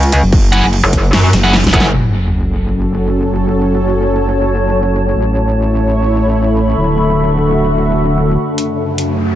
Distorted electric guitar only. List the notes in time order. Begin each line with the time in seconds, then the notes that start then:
0.52 E4 G#4 F#5
1.44 E4 G#4 F#5
1.73 E4 G#4 F#5